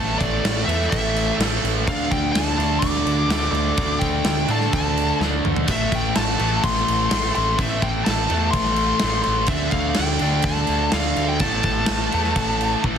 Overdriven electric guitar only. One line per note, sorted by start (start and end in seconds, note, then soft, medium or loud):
0.00 0.65 A2 medium
0.00 0.66 E3 medium
0.00 0.66 A3 loud
0.66 1.38 E3 medium
0.66 1.42 A3 medium
0.71 1.37 A2 medium
1.38 1.85 A2 medium
1.38 1.86 E3 medium
1.38 1.88 A3 medium
1.85 2.59 D3 medium
1.85 2.58 A3 loud
1.89 2.56 D4 loud
2.57 3.28 D3 medium
2.57 3.31 A3 medium
2.57 3.28 D4 loud
3.29 3.74 D3 medium
3.29 3.78 A3 medium
3.29 3.78 D4 loud
3.76 4.47 D3 medium
3.76 4.50 A3 medium
3.76 4.47 D4 loud
4.48 5.19 D3 medium
4.48 5.22 A3 medium
4.48 5.18 D4 medium
5.20 5.67 D3 medium
5.20 5.68 A3 medium
5.25 5.69 D4 loud
5.67 6.40 A2 loud
5.67 6.39 E3 medium
5.67 6.37 A3 loud
6.37 7.08 A2 medium
6.37 7.10 E3 medium
6.37 7.13 A3 medium
7.09 7.56 A2 medium
7.09 7.57 E3 medium
7.09 7.61 A3 medium
7.57 8.28 A2 medium
7.57 8.29 E3 medium
7.57 8.28 A3 medium
8.28 9.00 E3 medium
8.28 9.04 A3 loud
8.32 8.99 A2 medium
9.00 9.47 A2 medium
9.00 9.48 E3 medium
9.04 9.49 A3 medium
9.48 10.19 D3 medium
9.48 10.22 A3 medium
9.48 10.19 D4 loud
10.20 10.90 D3 medium
10.20 10.92 A3 medium
10.20 10.91 D4 loud
10.91 11.38 D3 medium
10.91 11.39 A3 medium
10.91 11.40 D4 loud
11.39 12.10 A2 medium
11.39 12.11 E3 loud
11.44 12.09 A3 medium
12.11 12.81 A2 medium
12.11 12.83 E3 medium
12.11 12.82 A3 medium
12.82 12.98 A2 medium
12.82 12.98 E3 medium
12.82 12.98 A3 medium